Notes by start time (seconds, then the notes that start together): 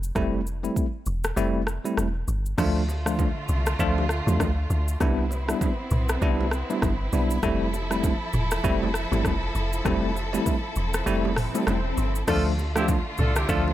Already playing: F1
0.03 shaker
0.15 F1 G3 A3 C4 E4, kick, cross-stick, shaker
0.47 shaker
0.63 G3 A3 C4 E4, shaker
0.76 kick, shaker
1.06 E1, shaker
1.24 cross-stick, shaker
1.37 F1 G3 A3 C4 E4, shaker
1.67 cross-stick, shaker
1.85 G3 A3 C4 E4, shaker
1.97 E1, cross-stick, shaker
2.28 G1, shaker
2.46 shaker
2.58 D2 D3 F3 A3 D4 F4, kick, cross-stick, crash, low conga, shaker
2.88 low bongo, shaker
3.06 F3 A3 D4 F4, cross-stick, shaker
3.19 kick, high bongo, low conga, shaker
3.48 C2, shaker
3.66 cross-stick, shaker
3.79 D2 F3 A3 D4 F4, kick, low conga, shaker
3.98 low bongo
4.09 cross-stick, shaker
4.27 E2 F3 A3 D4 F4, low bongo, shaker
4.40 D2, kick, cross-stick, high bongo, shaker
4.70 D2, shaker
4.88 shaker
5.00 C2 G3 B3 C4 D4 E4, kick, cross-stick, low conga, shaker
5.31 low bongo, shaker
5.48 G3 B3 D4 E4, cross-stick, shaker
5.61 kick, high bongo, low conga, shaker
5.91 B1, mid tom, shaker
6.09 cross-stick, shaker
6.22 C2 G3 B3 D4 E4, kick, low conga, shaker
6.41 low bongo
6.51 cross-stick, shaker
6.70 G3 B3 D4 E4, low bongo, shaker
6.82 G1, kick, cross-stick, high bongo, shaker
7.13 B1 G3 B3 D4 E4, shaker
7.30 shaker
7.43 F1 F3 G3 A3 C4 E4 A4, kick, cross-stick, swell, low conga, shaker
7.73 low bongo, shaker
7.91 G3 A3 C4 E4, cross-stick, shaker
8.04 kick, high bongo, low conga, shaker
8.33 E1, mid tom, shaker
8.51 cross-stick, shaker
8.64 F1 G3 A3 C4 E4, kick, low conga, shaker
8.83 low bongo
8.94 cross-stick, shaker
9.12 G1 G3 A3 C4 E4, low bongo, shaker
9.25 F1, kick, cross-stick, high bongo, shaker
9.55 F1, shaker
9.73 shaker
9.85 F1 G3 A3 C4 E4, kick, cross-stick, low conga, shaker
10.16 low bongo, shaker
10.33 G3 A3 C4 E4, low bongo, shaker
10.46 kick, high bongo, low conga, shaker
10.76 E1, shaker
10.94 cross-stick, shaker
11.06 F1 G3 A3 C4 E4, low conga, shaker
11.25 low bongo
11.36 cross-stick, mid tom, open hi-hat, shaker
11.54 G3 A3 C4 E4, low bongo, shaker
11.67 E1, cross-stick, high bongo, shaker
11.97 G1, shaker
12.15 shaker
12.28 D2 D3 F3 A3 D4 F4 A4, kick, cross-stick, crash, low conga, shaker
12.58 low bongo, shaker
12.75 F3 A3 C4 D4 E4 F4 G4, cross-stick, low bongo, shaker
12.88 kick, high bongo, low conga, shaker
13.18 C2 D4 F4 A4, mid tom, high bongo, shaker
13.36 C4 E4 G4, cross-stick, shaker
13.49 D2 F3 A3 D4 F4 A4, kick, low conga, shaker
13.68 low bongo